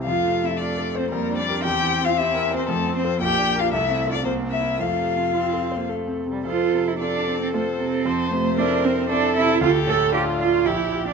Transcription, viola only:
\new Staff \with { instrumentName = "Viola" } { \time 3/4 \key f \major \tempo 4 = 114 a2 g4 | c'2. | bes4 a4 bes4 | a4 c'8. bes16 a8. g16 |
a'4 a'2 | c''4 bes'4 a'4 | a'4 f'4 g'4 | }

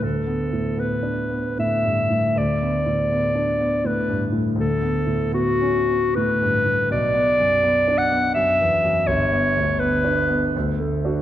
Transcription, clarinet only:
\new Staff \with { instrumentName = "Clarinet" } { \time 3/4 \key g \lydian \tempo 4 = 81 a'4 b'4 e''4 | d''2 b'8 r8 | a'4 fis'4 b'4 | d''4. fis''8 e''4 |
cis''4 b'4 r4 | }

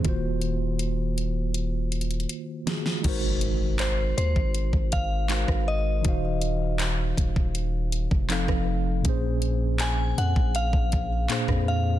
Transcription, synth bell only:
\new Staff \with { instrumentName = "Synth bell" } { \time 4/4 \key ees \dorian \tempo 4 = 80 r1 | r4 c''8 c''4 f''4 ees''8~ | ees''4 r2. | r4 aes''8 ges''8 f''4. f''8 | }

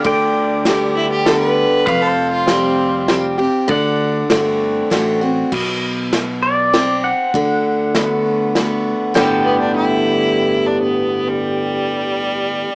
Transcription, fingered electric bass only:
\new Staff \with { instrumentName = "Fingered electric bass" } { \clef bass \time 3/4 \key d \dorian \tempo 4 = 99 d,2. | f,,2. | d,4 g,,4 a,,4 | \key g \major b,,2. |
d,2. | g,,2.~ | g,,2. | }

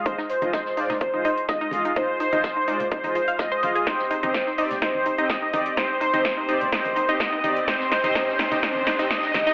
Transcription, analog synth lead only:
\new Staff \with { instrumentName = "Analog synth lead" } { \time 4/4 \key f \dorian \tempo 4 = 126 c''8 c''4. c''4 ees''4 | c''8 c''4. c''4 ees''4 | c''8 c''4. c''4 ees''4 | c''8 c''4. c''4 ees''4 |
c''8 c''4. c''4 ees''4 | }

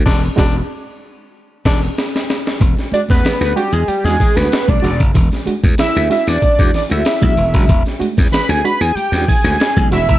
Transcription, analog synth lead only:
\new Staff \with { instrumentName = "Analog synth lead" } { \time 4/4 \key e \mixolydian \tempo 4 = 94 r1 | r8 d''16 b'8 b'16 g'16 gis'16 g'16 gis'16 gis'16 b'8 d''8 r16 | r4 e''8 e''16 d''16 d''8 d''16 e''4~ e''16~ | e''16 r8. b''16 gis''16 b''16 gis''16 g''8 gis''4 e''8 | }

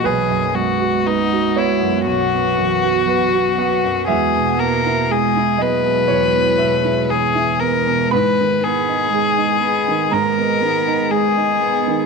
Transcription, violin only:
\new Staff \with { instrumentName = "Violin" } { \time 4/4 \key gis \minor \tempo 4 = 60 gis'8 fis'8 dis'8 e'8 fis'2 | gis'8 ais'8 gis'8 b'4. gis'8 ais'8 | b'8 gis'4. ais'4 gis'4 | }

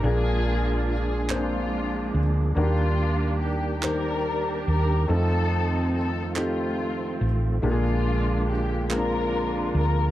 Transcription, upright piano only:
<<
  \new Staff \with { instrumentName = "Upright piano" } { \time 6/8 \key bes \mixolydian \tempo 4. = 47 <bes d' f' aes' bes'>4 r8 <bes c' d' f' aes' c''>4 r8 | <bes d' ges' g' bes'>4 r8 <ees bes d' g' c''>4 r8 | <a c' ees' f' a'>4 r8 <a c' ees' f' g'>4 r8 | <aes bes d' f' g' aes'>4 r8 <aes bes c' d' f' bes'>4 r8 | }
  \new Staff \with { instrumentName = "Upright piano" } { \clef bass \time 6/8 \key bes \mixolydian bes,4. r4. | ees4. r4. | r2. | bes,4. r4. | }
>>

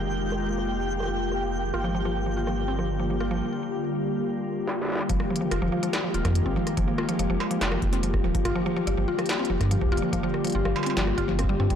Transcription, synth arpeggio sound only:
\new Staff \with { instrumentName = "Synth arpeggio sound" } { \clef bass \time 4/4 \key f \dorian \tempo 4 = 143 r1 | f'16 f16 f16 f16 r16 f16 f'16 f16 r16 c'16 f16 r16 f16 f16 f'16 f16 | r1 | f16 r16 f16 f16 f'16 f16 f16 f16 r16 f16 f'16 f16 r16 c'16 f16 r16 |
f16 f16 f'16 f16 f16 f16 r16 f16 f'16 f16 r16 c'16 f16 r16 f16 f16 | f'16 f16 f16 f16 r16 f16 f'16 f16 r16 c'16 f16 r16 f16 f16 f'16 f16 | f16 f16 r16 f16 f'16 f16 r16 c'16 f16 r16 f'16 f16 c'16 g16 c'16 g16 | }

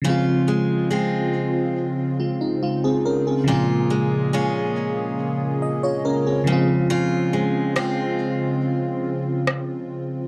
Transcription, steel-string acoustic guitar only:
\new Staff \with { instrumentName = "Steel-string acoustic guitar" } { \clef bass \time 4/4 \key des \major \tempo 4 = 70 <des f'>8 aes8 <aes c' f'>2. | <bes, f'>8 aes8 <aes des' f'>2~ <aes des' f'>8 des8 | <des f'>8 aes8 <aes c' f'>2. | }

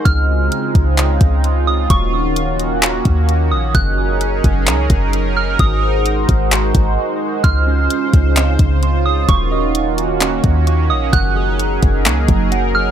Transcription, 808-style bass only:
\new Staff \with { instrumentName = "808-style bass" } { \clef bass \time 4/4 \key des \major \tempo 4 = 130 des,4 r8 des,4 des,4. | ees,,2~ ees,,8 ees,4 bes,,8 | ges,,4. ges,,8 des,8 ges,,4. | aes,,4. aes,,4 aes,,8 r4 |
des,4 r8 des,4 des,4. | ees,,2~ ees,,8 ees,4 bes,,8 | ges,,4. ges,,8 des,8 ges,,4. | }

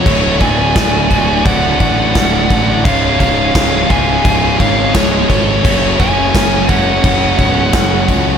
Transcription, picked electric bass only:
\new Staff \with { instrumentName = "Picked electric bass" } { \clef bass \time 4/4 \tempo 4 = 86 d,,8 d,,8 d,,8 d,,8 d,,8 a,,8 d,,8 a,,8 | cis,,8 cis,,8 cis,,8 cis,,8 cis,,8 gis,,8 cis,,8 gis,,8 | fis,,8 fis,,8 fis,,8 fis,,8 fis,,8 cis,,8 fis,,8 cis,8 | }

